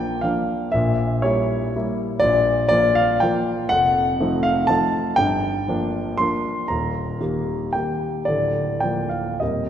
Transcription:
grand piano
Already playing: A#1 A#2 F3 A#3 D4 D5 G5
0.21 F3 A#3 D4 F5
0.72 A#1 A#2 E5
1.22 G3 A#3 E4 C#5
1.76 G3 A#3 E4
2.20 A#1 A#2 D5
2.69 F3 A#3 F4 D5
2.95 F5
3.20 F3 A#3 F4 G5
3.69 F1 F2 F#5
4.20 F3 A3 D#4
4.43 F5
4.67 F3 A3 D#4 A5
5.16 G1 G2 G5
5.68 F3 A#3 D4
6.18 F3 A#3 D4 C6
6.68 D#1 D#2 A#5
7.21 D#3 A#3 G4
7.73 D#3 A#3 G4 G5
8.25 D1 D2 D5
8.80 F3 A#3 A#4 G5
9.09 F5
9.40 D#1 D#2 G3 C4 A#4 D#5

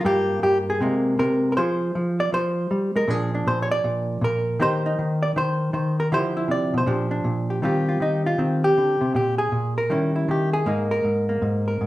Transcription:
hollow-body jazz guitar
0.01 G2 F4
0.05 G3 A#3 F4 G4
0.43 G2 G4
0.70 G#4
0.81 C3 G#3 A#3
1.19 C3 A#4
1.52 A#4
1.57 F3 F4 G#4 C5
1.95 F3
2.20 D5
2.32 F3 C5
2.71 G3
2.96 G#3 A#4
3.08 A#2 F3 D4 G#4
3.35 D4
3.47 A#2 C5
3.62 C#5
3.71 D5
3.84 A#2
4.21 A#2 A#4
4.59 D#3 A#3 D#4 G4 C5
4.86 D#4
4.99 D#3
5.23 D5
5.36 D#3 C5
5.73 D#3 C5
6.00 A#4
6.12 D3 F3 E4 G4 C5
6.37 E4
6.48 C3 D5
6.74 B2
6.78 C5
6.86 A#2 F3 D4 G4
7.11 D4
7.24 A#2
7.50 G4
7.62 D#3 G3 C4 F4 G4
7.89 F4
8.00 D#3 D#4
8.26 F4
8.38 D#3 C4
8.64 G4
8.78 D3
9.01 C3
9.14 A#2 G4
9.38 G#4
9.52 A#2
9.78 A#4
9.90 D#3 G3 C#4 E4
10.16 E4
10.28 D#3 G4
10.53 G#4
10.66 G#2 G#3 A#3 D#4
10.91 A#4
11.04 G#2
11.29 A#3
11.42 G#2
11.68 A#4
11.81 G#2

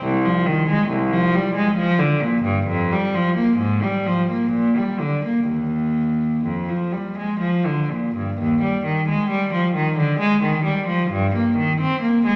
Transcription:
cello
0.03 C2
0.26 F3
0.46 D#3
0.70 G#3
0.89 C2
1.13 F3
1.35 G3
1.56 G#3
1.77 F3
1.99 D3
2.22 A#2
2.43 G2
2.68 F2
2.92 G3
3.15 F3
3.37 A#3
3.57 G#2
3.83 G3
4.07 F3
4.30 A#3
4.51 A#2
4.77 G3
5.00 D3
5.25 A#3
5.47 D#2
6.45 F2
6.69 F3
6.92 G3
7.18 G#3
7.41 F3
7.66 D3
7.91 A#2
8.16 G2
8.38 D#2
8.62 G3
8.86 D#3
9.09 G#3
9.30 G3
9.54 F3
9.75 D#3
9.99 D3
10.20 G#3
10.43 D#3
10.65 G3
10.87 F3
11.11 G2
11.36 A#3
11.58 D#3
11.81 C4
12.02 A#3
12.27 G#3

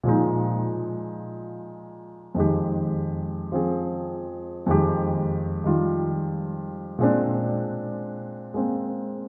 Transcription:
grand piano
0.04 A#2 F3 G#3
0.09 D#4
2.35 F2 D#3 G#3
2.40 G4
3.52 F3 C4 G#4
4.66 F2 D#3 G#3
4.71 G4
5.64 D#3 G3 F4
6.99 A#2 G#3 C4
7.03 D4
8.54 G#3 A#3 C4

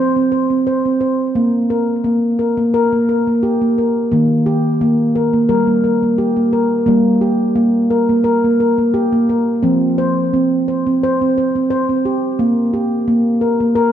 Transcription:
handpan
Already playing: F3 C5
0.16 C4
0.32 C5
0.50 C4
0.67 C5
0.85 C4
1.01 C5
1.35 A#3
1.70 A#4
2.04 A#3
2.39 A#4
2.57 A#3
2.74 A#4
2.92 A#3
3.09 A#4
3.27 A#3
3.43 G4
3.61 A#3
3.78 A#4
4.12 D#3 A#3
4.46 G4
4.81 A#3
5.15 A#4
5.33 A#3
5.49 G3 A#4
5.67 A#3
5.84 A#4
6.03 A#3
6.18 G4
6.37 A#3
6.53 A#4
6.86 G3 A#3
7.21 G4
7.56 A#3
7.90 A#4
8.09 A#3
8.24 A#4
8.44 A#3
8.60 A#4
8.78 A#3
8.94 G4
9.12 A#3
9.29 A#4
9.63 F3 C4
9.98 C5
10.34 C4
10.68 C5
10.87 C4
11.03 C5
11.21 C4
11.38 C5
11.55 C4
11.70 C5
11.89 C4
12.05 G4
12.39 A#3
12.73 G4
13.08 A#3
13.41 A#4
13.60 A#3
13.75 A#4

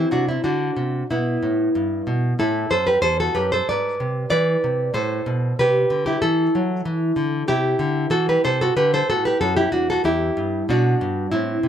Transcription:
nylon-string guitar
Already playing: C4 E4
0.11 C3 D4 F#4
0.28 C4 E4
0.44 D3 D4 F#4
0.77 C3
1.10 B2 B3 E4
1.43 A2
1.75 G2
2.07 B2
2.39 A2 E4 A4
2.70 F#2 A4 C5
2.87 G4 B4
3.02 E2 A4 C5
3.20 F#4 A4
3.35 F#2 G4 B4
3.52 A4 C5
3.69 G#2 B4 D5
4.00 C3
4.30 E3 B4 D5
4.64 C3
4.94 A2 A4 C5
5.26 B2
5.59 C3 G4 B4
5.90 D3
6.06 E4 G4
6.22 E3 E4 A4
6.55 F#3
6.85 E3
7.16 D3
7.48 C3 E4 G4
7.79 D3
8.10 E3 F#4 A4
8.29 G4 B4
8.44 C3 A4 C5
8.61 F#4 A4
8.76 D3 G4 B4
8.94 A4 C5
9.10 A2 F#4 A4
9.25 G4 B4
9.41 F#2 F#4 A4
9.57 E4 G4
9.72 E2 D4 F#4
9.90 F#4 A4
10.04 E2 E4 G4
10.37 G2
10.69 B2 D4 F#4
11.01 G2
11.32 A2 C4 E4
11.63 C3

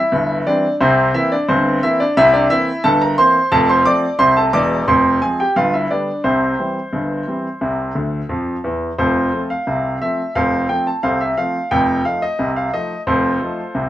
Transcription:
grand piano
Already playing: E4 E5
0.12 G1 G2
0.47 E3 G3 C4 D4 D5
0.81 C2 C3 C4 C5
1.14 E3 A#3 C4 E4 E5
1.32 D4 D5
1.49 G1 G2 C4 C5
1.83 E3 A#3 C4 E4 E5
2.00 D4 D5
2.17 C2 C3 E4 E5
2.33 D4 D5
2.50 E3 A#3 C4 E4 E5
2.84 G1 G2 A4 A5
3.01 A#4 A#5
3.18 E3 A#3 C4 C5 C6
3.52 F1 F2 A4 A5
3.69 C5 C6
3.86 F3 A3 C4 D5 D6
4.19 C2 C3 C5 C6
4.37 A4 A5
4.53 E1 E2 D5 D6
4.88 F1 F2 C5 C6
5.22 F3 G#3 C4 G#4 G#5
5.40 G4 G5
5.56 G1 G2 F4 F5
5.74 E4 E5
5.91 D3 G3 B3 D4 D5
6.24 C2 C3 C4 C5
6.59 E3 G3 C4
6.93 G1 G2
7.27 E3 G3 C4
7.61 C2 C3
7.95 D2 D3
8.29 F2 F3
8.64 E2 E3
8.98 F1 F2 F4 A4 C5
9.33 F3 A3 C4
9.50 F5
9.67 C2 C3
10.01 F3 A3 C4 E5
10.35 F1 F2 A4 C5 F5
10.69 F3 A3 C4 G5
10.87 A5
11.03 C2 C3 A4 C5 F5
11.21 E5
11.37 F3 A3 C4 F5
11.71 F1 F2 G5
12.05 F3 A3 D#4 F5
12.22 D#5
12.39 C2 C3
12.56 F5
12.74 F3 A3 D#4 D#5
13.07 F1 F2 F4 A4 C5
13.41 F3 A3 D#4
13.75 C2 C3

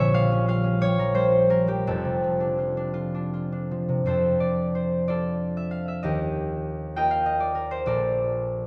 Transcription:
harp
Already playing: A#1 A#2 F4 C#5 F5 A#5
0.00 F3 E5
0.14 G3 F5
0.32 C#4
0.48 F4 F5
0.64 C#4
0.81 G3 C#5
0.98 F3 A#4
1.14 G3 C5
1.32 F4
1.50 C#4 A#4
1.67 F3 G4
1.87 F1 F2 A4
2.05 C3
2.24 F3
2.40 D4
2.58 F4
2.77 D4
2.94 F4
3.14 D4
3.34 F4
3.52 D4
3.71 F3
3.89 C3
4.06 F2 F4 A4 C5
4.40 D5
4.75 C5
5.08 D4 F4 A4 D5
5.57 E5
5.71 F5
5.88 E5
6.03 D#2 G4 A#4 D#5
6.96 A#3 F4 A#4 D#5 G5
7.11 F5
7.26 D#5
7.40 D5
7.55 A#4
7.71 C5
7.86 A#1 A4 A#4 D5

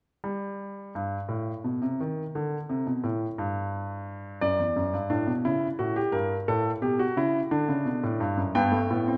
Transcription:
grand piano
0.24 G3
0.95 G2
1.29 A2
1.64 B2
1.82 C3
2.00 D#3
2.35 D3
2.69 C3
2.87 B2
3.04 A2
3.38 G2
4.41 F#2 D5
4.59 E2
4.76 F#2
4.93 G2
5.10 A2 D4
5.27 B2
5.45 C#3 E4
5.79 A2 F#4
5.96 G4
6.12 G2 A#4
6.48 A2 A4
6.82 B2 G4
6.99 F#4
7.17 C#3 E4
7.51 D3 D4
7.69 C#3
7.85 B2
8.04 A2
8.20 G2
8.37 F#2
8.55 G2 B3 G5
8.72 A3
8.91 A2 B3
9.08 C4

